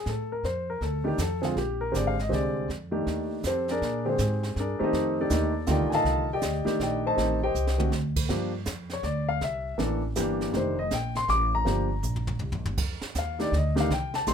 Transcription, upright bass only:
0.06 A2
0.43 F2
0.81 D2
1.18 F2
1.56 A#1
1.94 G#1
2.32 C2
2.69 F2
3.07 D#2
3.44 F2
3.81 A#2
4.19 G#2
4.56 G2
4.81 muted upright bass stroke
4.93 F2
5.30 D#2
5.67 D2
5.79 C2
5.92 A1
6.05 C2
6.42 D2
6.66 muted upright bass stroke
6.79 A#1
7.17 A1
7.55 C2
7.92 D2
8.29 G2
8.67 F2
9.03 D2
9.41 C2
9.79 A1
10.16 G1
10.53 F1
10.91 A#1
11.28 A1
11.65 G1
12.03 A#1
12.41 C2
12.53 A#1
12.65 G1
12.78 F2
13.02 muted upright bass stroke
13.15 D#2
13.52 D2
13.90 C2
14.27 A#1

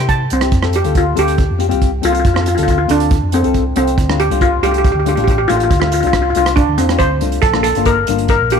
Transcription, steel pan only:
0.09 A5
0.33 C4
0.76 G4
0.98 F4
1.19 G4
2.05 F4
2.13 F4
2.19 F4
2.26 F4
2.34 F4
2.41 F4
2.48 F4
2.55 F4
2.63 F4
2.70 F4
2.78 F4
2.91 D4
3.34 C4
3.77 C4
4.20 G4
4.42 F4
4.63 G4
4.72 G4
4.78 G4
4.84 G4
4.92 G4
5.00 G4
5.09 G4
5.16 G4
5.24 G4
5.31 G4
5.38 G4
5.48 F4
5.56 F4
5.63 F4
5.70 F4
5.80 F4
5.87 F4
5.93 F4
6.00 F4
6.07 F4
6.15 F4
6.22 F4
6.30 F4
6.37 F4
6.56 D4
6.78 C4
6.99 C5
7.42 A4
7.63 A4
7.86 A#4
8.30 A#4
8.52 G4

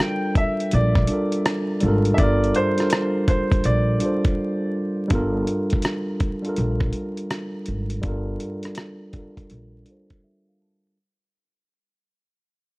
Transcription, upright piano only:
Already playing: G5
0.37 E5
0.74 D5
2.14 E5
2.19 D5
2.56 C5
3.28 C5
3.65 D5

